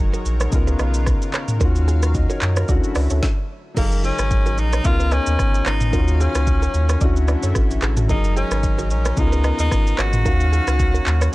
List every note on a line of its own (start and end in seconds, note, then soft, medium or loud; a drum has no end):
0.00 2.65 D#3 medium
0.00 0.49 F#3 medium
0.00 0.51 G#3 medium
0.00 0.50 D#4 medium
0.00 0.51 F#4 medium
0.00 0.51 G#4 medium
0.00 0.52 A#4 medium
0.00 2.65 A#4 medium
0.00 3.19 C#5 medium
0.14 0.23 F#4 medium
0.14 0.23 A#4 medium
0.14 shaker medium
0.25 0.48 A#1 loud
0.25 shaker medium
0.40 0.50 A#4 medium
0.40 0.50 C#5 medium
0.40 cross-stick loud
0.40 shaker medium
0.50 0.75 C#2 loud
0.50 1.57 C#3 medium
0.50 1.58 B3 medium
0.50 1.60 B3 medium
0.50 1.59 D#4 medium
0.50 1.59 F4 medium
0.50 kick loud
0.50 shaker medium
0.55 1.60 A#4 medium
0.67 0.77 G#4 medium
0.67 0.77 B4 medium
0.67 shaker medium
0.79 1.15 B1 medium
0.79 0.92 B4 medium
0.79 0.91 D#5 medium
0.79 cross-stick loud
0.79 shaker medium
0.94 shaker loud
1.06 kick loud
1.06 cross-stick loud
1.06 shaker medium
1.22 shaker medium
1.33 1.46 A#4 medium
1.33 1.45 C#5 medium
1.33 cross-stick medium
1.33 clap medium
1.33 shaker soft
1.48 mid tom medium
1.48 shaker medium
1.58 2.26 D#2 loud
1.58 2.65 D#3 medium
1.58 2.67 F#3 medium
1.58 2.66 C#4 medium
1.58 2.14 F4 medium
1.58 1.73 F#4 medium
1.58 1.72 A#4 loud
1.58 2.68 F5 medium
1.58 kick loud
1.58 shaker medium
1.63 2.15 F#4 medium
1.76 shaker medium
1.88 2.00 F4 medium
1.88 1.99 G#4 medium
1.88 shaker medium
2.03 cross-stick loud
2.03 shaker loud
2.14 2.29 D#5 medium
2.14 kick loud
2.14 shaker medium
2.30 2.40 F#4 medium
2.30 2.39 A#4 medium
2.30 2.55 A#4 medium
2.30 2.55 C#5 medium
2.30 shaker medium
2.42 2.64 F#2 loud
2.42 clap medium
2.42 shaker medium
2.56 2.69 F#4 medium
2.56 2.82 A#4 medium
2.56 2.67 A#4 medium
2.56 2.66 C#5 medium
2.56 cross-stick loud
2.56 shaker medium
2.68 2.81 D2 loud
2.68 3.22 D3 medium
2.68 3.22 F#3 medium
2.68 3.22 A3 medium
2.68 3.23 C#4 medium
2.68 3.22 E4 medium
2.68 3.23 E4 medium
2.68 3.24 F#4 medium
2.68 2.81 A4 medium
2.68 2.80 D5 medium
2.68 kick loud
2.68 shaker medium
2.84 shaker medium
2.95 3.08 C#2 medium
2.95 3.08 B4 medium
2.95 3.07 D5 medium
2.95 cross-stick loud
2.95 open hi-hat medium
2.95 shaker medium
3.10 3.21 D2 medium
3.10 3.21 A4 medium
3.10 3.20 C#5 medium
3.10 shaker loud
3.23 kick loud
3.23 snare medium
3.74 4.12 F#1 loud
3.74 4.84 C#3 medium
3.74 4.82 F#3 medium
3.74 4.84 F#3 medium
3.74 4.84 G#3 medium
3.74 4.02 A#3 loud
3.74 4.82 D#4 medium
3.74 5.91 D#4 medium
3.74 3.89 F#4 medium
3.74 4.83 G#4 medium
3.74 5.91 A#4 medium
3.74 3.89 A#4 loud
3.74 kick loud
3.74 crash loud
3.74 shaker medium
3.79 3.85 A4 medium
3.86 4.86 A#4 medium
3.92 shaker medium
4.04 4.60 C#4 loud
4.04 4.16 F4 medium
4.04 4.16 G#4 medium
4.04 shaker medium
4.19 4.60 G#1 medium
4.19 cross-stick loud
4.19 shaker loud
4.31 kick medium
4.31 shaker medium
4.46 4.56 F#4 medium
4.46 4.56 A#4 medium
4.46 shaker medium
4.58 4.81 A#1 loud
4.58 4.87 D#4 loud
4.58 shaker medium
4.73 4.83 A#4 medium
4.73 4.82 C#5 medium
4.73 cross-stick loud
4.73 shaker medium
4.82 5.20 C#2 loud
4.82 5.90 C#3 medium
4.82 5.92 C#3 medium
4.82 5.92 F3 medium
4.82 5.90 B3 medium
4.82 5.92 B3 medium
4.82 5.91 D#4 medium
4.82 5.14 F4 loud
4.82 5.92 F4 medium
4.82 kick loud
4.82 shaker medium
4.87 5.92 A#4 medium
5.00 5.10 G#4 medium
5.00 5.09 B4 medium
5.00 shaker medium
5.11 5.66 C#4 loud
5.11 5.24 B4 medium
5.11 5.24 D#5 medium
5.11 cross-stick medium
5.11 shaker medium
5.26 5.37 D#2 loud
5.26 shaker loud
5.39 5.62 G#1 medium
5.39 kick loud
5.39 cross-stick medium
5.39 shaker medium
5.54 shaker medium
5.66 5.95 G#1 medium
5.66 6.23 D#4 loud
5.66 5.78 A#4 medium
5.66 5.78 C#5 medium
5.66 cross-stick medium
5.66 clap medium
5.66 shaker medium
5.81 mid tom loud
5.81 shaker medium
5.91 6.28 D#2 loud
5.91 6.98 D#3 medium
5.91 7.00 D#3 medium
5.91 9.14 F#3 medium
5.91 7.00 A#3 medium
5.91 6.99 C#4 medium
5.91 8.07 C#4 medium
5.91 7.00 F4 medium
5.91 6.05 F#4 medium
5.91 6.05 A#4 loud
5.91 7.00 F5 medium
5.91 kick loud
5.91 shaker medium
5.96 7.00 F#4 medium
6.08 shaker medium
6.20 7.29 C#4 medium
6.20 6.32 F4 medium
6.20 6.32 G#4 medium
6.20 shaker medium
6.35 6.68 C#2 medium
6.35 cross-stick loud
6.35 shaker loud
6.47 kick loud
6.47 shaker medium
6.62 6.72 F#4 medium
6.62 6.72 A#4 medium
6.62 shaker medium
6.74 6.97 D#2 loud
6.74 shaker medium
6.89 6.99 A#4 medium
6.89 6.99 C#5 medium
6.89 cross-stick loud
6.89 shaker medium
6.99 7.36 D2 loud
6.99 8.06 D3 medium
6.99 8.08 D3 medium
6.99 8.08 A3 medium
6.99 8.07 C#4 medium
6.99 8.08 E4 medium
6.99 7.13 A4 medium
6.99 7.13 D5 medium
6.99 kick loud
6.99 shaker medium
7.04 8.08 F#4 medium
7.16 shaker medium
7.28 7.41 B4 medium
7.28 7.40 D5 medium
7.28 cross-stick loud
7.28 shaker medium
7.43 7.53 F#2 medium
7.43 7.53 A4 medium
7.43 7.53 C#5 medium
7.43 shaker loud
7.55 7.78 A1 loud
7.55 7.68 F#4 medium
7.55 7.67 A4 medium
7.55 kick loud
7.55 cross-stick loud
7.55 shaker medium
7.71 shaker medium
7.82 8.11 A1 loud
7.82 7.95 E4 medium
7.82 7.94 G#4 medium
7.82 cross-stick medium
7.82 clap medium
7.82 shaker soft
7.97 8.07 F#4 medium
7.97 8.07 A4 medium
7.97 mid tom medium
7.97 shaker medium
8.07 8.44 F#1 loud
8.07 10.23 C#3 medium
8.07 9.14 F#3 medium
8.07 9.16 G#3 medium
8.07 9.15 D#4 medium
8.07 10.23 D#4 medium
8.07 8.35 D#4 loud
8.07 8.22 F#4 medium
8.07 9.16 G#4 medium
8.07 8.21 A#4 loud
8.07 10.23 A#4 medium
8.07 kick loud
8.07 shaker medium
8.12 9.17 A#4 medium
8.24 shaker medium
8.36 8.87 C#4 medium
8.36 8.49 F4 medium
8.36 8.48 G#4 medium
8.36 shaker medium
8.51 8.92 G#1 medium
8.51 cross-stick loud
8.51 shaker loud
8.63 kick loud
8.63 shaker medium
8.79 8.88 F#4 medium
8.79 8.88 A#4 medium
8.79 shaker medium
8.90 9.13 A#1 loud
8.90 9.20 C#4 medium
8.90 shaker medium
9.05 9.15 A#4 medium
9.05 9.15 C#5 medium
9.05 cross-stick loud
9.05 shaker medium
9.15 9.53 C#2 loud
9.15 10.22 C#3 medium
9.15 10.24 F3 medium
9.15 10.23 B3 medium
9.15 10.24 B3 medium
9.15 10.23 D#4 medium
9.15 9.60 D#4 loud
9.15 10.24 F4 medium
9.15 kick loud
9.15 shaker medium
9.20 9.26 G#4 medium
9.27 10.28 A#4 medium
9.32 9.42 G#4 medium
9.32 9.42 B4 medium
9.32 shaker medium
9.44 9.57 B4 medium
9.44 9.56 D#5 medium
9.44 cross-stick loud
9.44 shaker medium
9.59 9.69 D#2 loud
9.59 10.01 D#4 loud
9.59 shaker loud
9.71 9.94 G#1 loud
9.71 kick loud
9.71 cross-stick loud
9.71 shaker medium
9.87 shaker medium
9.98 10.27 G#1 medium
9.98 11.35 F#4 loud
9.98 10.11 A#4 medium
9.98 10.10 C#5 medium
9.98 cross-stick medium
9.98 clap medium
9.98 shaker medium
10.13 mid tom loud
10.13 shaker medium
10.23 10.61 D#2 loud
10.23 11.30 D#3 medium
10.23 11.32 D#3 medium
10.23 11.35 F#3 medium
10.23 11.32 A#3 medium
10.23 11.31 C#4 medium
10.23 11.35 C#4 medium
10.23 10.38 F#4 medium
10.23 10.37 A#4 loud
10.23 11.32 F5 medium
10.23 kick loud
10.23 shaker medium
10.28 11.33 F#4 medium
10.40 shaker medium
10.53 10.65 F4 medium
10.53 10.64 G#4 medium
10.53 shaker medium
10.67 11.00 C#2 medium
10.67 cross-stick loud
10.67 shaker loud
10.79 kick loud
10.79 shaker medium
10.94 11.04 F#4 medium
10.94 11.04 A#4 medium
10.94 shaker medium
11.06 11.29 D#2 loud
11.06 clap medium
11.06 shaker medium
11.21 11.31 A#4 medium
11.21 11.31 C#5 medium
11.21 cross-stick loud
11.21 shaker medium
11.31 11.35 D3 medium